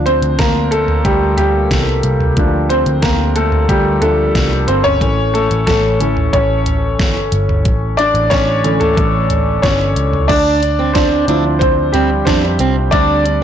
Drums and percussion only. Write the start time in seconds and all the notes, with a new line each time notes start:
0.07 closed hi-hat
0.22 closed hi-hat
0.39 kick, snare, closed hi-hat
0.72 closed hi-hat
0.88 floor tom
1.05 kick, closed hi-hat
1.38 closed hi-hat, floor tom
1.71 kick, snare, closed hi-hat
2.03 closed hi-hat
2.20 floor tom
2.37 kick, closed hi-hat
2.70 closed hi-hat
2.86 closed hi-hat
3.02 kick, snare, closed hi-hat
3.36 closed hi-hat
3.52 floor tom
3.69 kick, closed hi-hat
4.02 closed hi-hat, floor tom
4.35 kick, snare, closed hi-hat
4.68 closed hi-hat
4.85 floor tom
5.01 kick, closed hi-hat
5.35 closed hi-hat
5.51 closed hi-hat
5.67 kick, snare, closed hi-hat
6.00 closed hi-hat
6.17 floor tom
6.33 kick, closed hi-hat
6.66 closed hi-hat, floor tom
6.99 kick, snare, closed hi-hat
7.32 closed hi-hat
7.49 floor tom
7.65 kick, closed hi-hat
7.99 closed hi-hat
8.15 closed hi-hat
8.31 kick, snare, closed hi-hat
8.64 closed hi-hat
8.81 closed hi-hat, floor tom
8.97 kick, closed hi-hat
9.30 closed hi-hat, floor tom
9.63 kick, snare, closed hi-hat
9.96 closed hi-hat
10.13 floor tom
10.29 kick, closed hi-hat, crash
10.63 closed hi-hat
10.95 kick, snare, closed hi-hat
11.28 closed hi-hat
11.61 kick, closed hi-hat
11.94 closed hi-hat, floor tom
12.27 kick, snare, closed hi-hat
12.59 closed hi-hat
12.92 kick, closed hi-hat
13.26 closed hi-hat